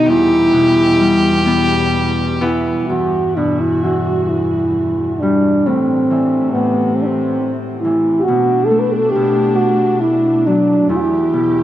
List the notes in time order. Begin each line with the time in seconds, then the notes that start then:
Already playing: B2 A3 B3 D#4
0.06 E2 G3 E4 G4
0.53 B2
0.99 G3
1.46 B3
2.41 E3 B3 E4
2.86 E2 G2 E3 F#4
3.36 B2 D4
3.60 E4
3.84 E3 F#4
4.23 F#4
4.29 E4
5.15 E4
5.20 G3 D4
5.66 A2 C3 C4
6.10 E3
6.52 A2 B3
6.95 C4
7.02 C4 D4
7.80 E4
7.85 E3
8.20 F#4 G4
8.26 B2 A3 D4
8.66 A4
8.71 A3
8.79 B4
8.92 G4 A4
9.10 G4
9.15 B2
9.56 F#4
10.01 E4
10.46 F#3 D4
10.89 E2 D3 E4 G4
10.96 E4 F#4
11.33 B2